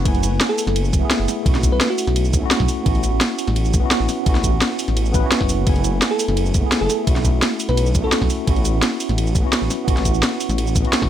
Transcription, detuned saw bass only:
0, 0, Header, 1, 2, 480
1, 0, Start_track
1, 0, Key_signature, 3, "major"
1, 0, Tempo, 350877
1, 73, Time_signature, 4, 2, 24, 8
1, 15178, End_track
2, 0, Start_track
2, 0, Title_t, "Detuned saw bass"
2, 0, Program_c, 0, 39
2, 73, Note_on_c, 0, 30, 106
2, 416, Note_off_c, 0, 30, 0
2, 432, Note_on_c, 0, 30, 98
2, 539, Note_off_c, 0, 30, 0
2, 913, Note_on_c, 0, 30, 108
2, 1253, Note_off_c, 0, 30, 0
2, 1275, Note_on_c, 0, 30, 101
2, 1385, Note_off_c, 0, 30, 0
2, 1632, Note_on_c, 0, 30, 97
2, 1740, Note_off_c, 0, 30, 0
2, 1994, Note_on_c, 0, 35, 107
2, 2337, Note_off_c, 0, 35, 0
2, 2356, Note_on_c, 0, 35, 97
2, 2461, Note_off_c, 0, 35, 0
2, 2835, Note_on_c, 0, 35, 113
2, 3174, Note_off_c, 0, 35, 0
2, 3194, Note_on_c, 0, 35, 96
2, 3304, Note_off_c, 0, 35, 0
2, 3555, Note_on_c, 0, 35, 95
2, 3661, Note_off_c, 0, 35, 0
2, 3914, Note_on_c, 0, 33, 108
2, 4257, Note_off_c, 0, 33, 0
2, 4276, Note_on_c, 0, 33, 98
2, 4381, Note_off_c, 0, 33, 0
2, 4754, Note_on_c, 0, 33, 109
2, 5093, Note_off_c, 0, 33, 0
2, 5112, Note_on_c, 0, 33, 99
2, 5223, Note_off_c, 0, 33, 0
2, 5474, Note_on_c, 0, 33, 98
2, 5580, Note_off_c, 0, 33, 0
2, 5833, Note_on_c, 0, 33, 109
2, 6176, Note_off_c, 0, 33, 0
2, 6193, Note_on_c, 0, 33, 96
2, 6300, Note_off_c, 0, 33, 0
2, 6675, Note_on_c, 0, 33, 109
2, 7014, Note_off_c, 0, 33, 0
2, 7033, Note_on_c, 0, 33, 97
2, 7144, Note_off_c, 0, 33, 0
2, 7398, Note_on_c, 0, 30, 89
2, 7735, Note_off_c, 0, 30, 0
2, 7756, Note_on_c, 0, 30, 106
2, 8098, Note_off_c, 0, 30, 0
2, 8113, Note_on_c, 0, 30, 99
2, 8219, Note_off_c, 0, 30, 0
2, 8593, Note_on_c, 0, 30, 109
2, 8933, Note_off_c, 0, 30, 0
2, 8955, Note_on_c, 0, 30, 97
2, 9065, Note_off_c, 0, 30, 0
2, 9314, Note_on_c, 0, 30, 94
2, 9420, Note_off_c, 0, 30, 0
2, 9676, Note_on_c, 0, 35, 101
2, 10018, Note_off_c, 0, 35, 0
2, 10037, Note_on_c, 0, 35, 96
2, 10142, Note_off_c, 0, 35, 0
2, 10516, Note_on_c, 0, 35, 109
2, 10854, Note_off_c, 0, 35, 0
2, 10875, Note_on_c, 0, 35, 96
2, 10984, Note_off_c, 0, 35, 0
2, 11238, Note_on_c, 0, 35, 94
2, 11342, Note_off_c, 0, 35, 0
2, 11595, Note_on_c, 0, 33, 104
2, 11937, Note_off_c, 0, 33, 0
2, 11954, Note_on_c, 0, 33, 98
2, 12060, Note_off_c, 0, 33, 0
2, 12437, Note_on_c, 0, 33, 108
2, 12775, Note_off_c, 0, 33, 0
2, 12793, Note_on_c, 0, 33, 99
2, 12904, Note_off_c, 0, 33, 0
2, 13154, Note_on_c, 0, 33, 96
2, 13260, Note_off_c, 0, 33, 0
2, 13513, Note_on_c, 0, 33, 107
2, 13856, Note_off_c, 0, 33, 0
2, 13874, Note_on_c, 0, 33, 97
2, 13980, Note_off_c, 0, 33, 0
2, 14351, Note_on_c, 0, 33, 107
2, 14692, Note_off_c, 0, 33, 0
2, 14712, Note_on_c, 0, 33, 99
2, 14823, Note_off_c, 0, 33, 0
2, 15078, Note_on_c, 0, 30, 96
2, 15178, Note_off_c, 0, 30, 0
2, 15178, End_track
0, 0, End_of_file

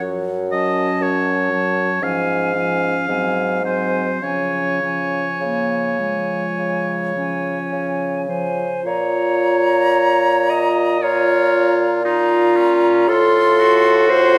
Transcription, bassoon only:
0, 0, Header, 1, 2, 480
1, 0, Start_track
1, 0, Key_signature, -5, "major"
1, 0, Tempo, 1008403
1, 8, Time_signature, 4, 2, 24, 8
1, 967, Tempo, 1058201
1, 1447, Tempo, 1136364
1, 1927, Tempo, 1181102
1, 2887, Tempo, 1138520
1, 3846, Key_signature, -5, "minor"
1, 3847, Tempo, 1100917
1, 4327, Tempo, 1063830
1, 4807, Tempo, 1025641
1, 6375, End_track
2, 0, Start_track
2, 0, Title_t, "Bassoon"
2, 0, Program_c, 0, 70
2, 4, Note_on_c, 0, 42, 57
2, 428, Note_off_c, 0, 42, 0
2, 481, Note_on_c, 0, 42, 50
2, 906, Note_off_c, 0, 42, 0
2, 962, Note_on_c, 0, 44, 52
2, 1387, Note_off_c, 0, 44, 0
2, 1446, Note_on_c, 0, 44, 47
2, 1867, Note_off_c, 0, 44, 0
2, 1925, Note_on_c, 0, 49, 43
2, 2353, Note_off_c, 0, 49, 0
2, 2407, Note_on_c, 0, 49, 39
2, 2829, Note_off_c, 0, 49, 0
2, 2887, Note_on_c, 0, 49, 40
2, 3312, Note_off_c, 0, 49, 0
2, 3367, Note_on_c, 0, 49, 36
2, 3791, Note_off_c, 0, 49, 0
2, 3845, Note_on_c, 0, 46, 55
2, 5767, Note_on_c, 0, 45, 70
2, 5774, Note_off_c, 0, 46, 0
2, 6375, Note_off_c, 0, 45, 0
2, 6375, End_track
0, 0, End_of_file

